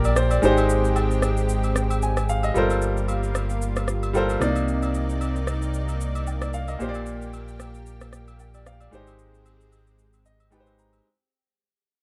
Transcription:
Already playing: sub bass A#1, grand piano A#2 A#3 G4 A#4 D5, analog synth pad A#3 G4 D5
0.04 grand piano D5, high agogo, shaker
0.16 grand piano C5, cross-stick, shaker
0.31 grand piano D5, high agogo, shaker
0.42 sub bass G#1, grand piano G#3 D#4 G4 C5, analog synth pad G#3 C4 G4, shaker
0.57 high agogo, shaker
0.69 shaker
0.85 shaker
0.96 high agogo, low woodblock, shaker
1.11 shaker
1.22 cross-stick, high agogo, shaker
1.37 shaker
1.49 shaker
1.64 high agogo, shaker
1.76 cross-stick, shaker
1.91 high agogo, shaker
2.02 grand piano G#5, shaker
2.17 cross-stick, high agogo, shaker
2.29 grand piano F5, shaker
2.43 grand piano D#5, high agogo, shaker
2.54 sub bass G1, grand piano G3 F4 A4 A#4 C5, analog synth pad G3 A#3 F4, shaker
2.70 high agogo, shaker
2.82 shaker
2.97 shaker
3.08 high agogo, shaker
3.23 shaker
3.35 cross-stick, high agogo, shaker
3.50 shaker
3.62 shaker
3.76 cross-stick, high agogo, shaker
3.88 cross-stick, shaker
4.03 high agogo, shaker
4.13 grand piano G3 F4 A4 A#4 C5, low woodblock, shaker
4.29 high agogo, shaker
4.40 sub bass C2, grand piano C3 A#3 D#4 D5, analog synth pad C3 A#3 D#4 D5, cross-stick, shaker
4.56 high agogo, shaker
4.68 shaker
4.82 high agogo, shaker
4.94 shaker
5.10 shaker
5.21 high agogo, shaker
5.36 shaker
5.47 cross-stick, high agogo, shaker
5.62 shaker
5.74 shaker
5.89 high agogo, shaker
6.01 shaker
6.15 high agogo, shaker
6.27 low woodblock, shaker
6.42 grand piano D5, cross-stick, high agogo, shaker
6.54 grand piano F5, shaker
6.68 grand piano D#5, high agogo, shaker
6.79 sub bass A#1, grand piano A#2 A#3 G4 C5, analog synth pad G4, shaker
6.89 grand piano D5
6.94 high agogo, shaker
7.06 shaker
7.22 shaker
7.33 high agogo, shaker
7.48 shaker
7.60 cross-stick, high agogo, shaker
7.74 shaker
7.86 shaker
8.01 cross-stick, high agogo, shaker
8.13 cross-stick, shaker
8.28 high agogo, shaker
8.39 low woodblock, shaker
8.54 grand piano D5, high agogo, shaker
8.66 grand piano F5, cross-stick, shaker
8.81 grand piano D5, high agogo, shaker
8.91 sub bass G#1, grand piano G#3 D#4 G4 C5, analog synth pad G#3 C4, shaker
9.07 high agogo, shaker
9.19 shaker
9.34 shaker
9.46 high agogo, shaker
9.61 shaker
9.72 high agogo, shaker
9.87 shaker
9.99 shaker
10.13 high agogo, shaker
10.26 grand piano D#5, shaker
10.40 high agogo, shaker
10.51 grand piano G#3 D#4 G4 B4 G5, low woodblock, shaker
10.60 grand piano C5
10.66 high agogo, shaker
10.79 grand piano A#5, shaker
10.93 high agogo, shaker

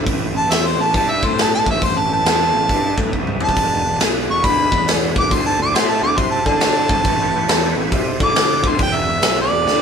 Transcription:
0.06 picked electric bass A1, tonewheel organ C#4 E4 G4 B4, kick, open hi-hat
0.33 picked electric bass A1
0.38 harmonica A5
0.48 picked electric bass E2, harmonica E5, snare, open hi-hat
0.66 harmonica C5
0.77 picked electric bass A1
0.82 harmonica A5
0.94 picked electric bass G2, harmonica A5, kick, open hi-hat
1.10 harmonica E5
1.23 picked electric bass A2, harmonica C5, kick
1.38 harmonica A5, snare, open hi-hat
1.55 harmonica A5
1.66 picked electric bass A1, kick
1.71 harmonica E5
1.81 picked electric bass A1, harmonica C5, kick, open hi-hat
1.99 harmonica A5
2.08 picked electric bass A1
2.14 harmonica A5
2.24 picked electric bass E2, snare, open hi-hat
2.54 picked electric bass A1
2.69 picked electric bass G2, kick, open hi-hat
2.97 picked electric bass A2, kick
3.13 picked electric bass C2, kick
3.27 mid tom
3.40 harmonica A5, mid tom
3.49 kick
3.56 picked electric bass E1, tonewheel organ G#3 D4 F#4 B4, kick, open hi-hat
3.85 picked electric bass E1
4.00 picked electric bass B1, snare, open hi-hat
4.29 picked electric bass E1, harmonica C#6
4.44 picked electric bass D2, harmonica B5, kick, open hi-hat
4.72 picked electric bass E2, kick
4.88 snare, open hi-hat
5.16 picked electric bass E1, harmonica D6, kick
5.31 picked electric bass D2, tonewheel organ E4 F#4 A4 C5, harmonica C6, kick, open hi-hat
5.46 harmonica A5
5.59 picked electric bass D2, harmonica D6
5.74 picked electric bass A2, harmonica C6, snare, open hi-hat
5.90 harmonica A5
6.02 picked electric bass D2, harmonica D6
6.17 picked electric bass C3, harmonica C6, kick, open hi-hat
6.31 harmonica A5
6.46 picked electric bass D3, harmonica A5, kick
6.60 snare, open hi-hat
6.89 picked electric bass D2, kick
7.03 picked electric bass A1, tonewheel organ E4 G4 B4 C#5, kick, open hi-hat
7.34 picked electric bass A1
7.48 picked electric bass E2, snare, open hi-hat
7.77 picked electric bass A1
7.90 picked electric bass C3, tonewheel organ E4 F#4 A4 C5, kick, open hi-hat
8.20 picked electric bass D3, harmonica D6, kick
8.35 snare, open hi-hat
8.63 picked electric bass D2, kick
8.69 harmonica C6
8.78 picked electric bass E1, tonewheel organ D4 F#4 G#4 B4, kick, open hi-hat
8.83 harmonica G5
8.97 harmonica E5
9.07 picked electric bass E1
9.22 picked electric bass B1, snare, open hi-hat
9.41 harmonica D5
9.51 picked electric bass E1
9.66 picked electric bass D2, snare

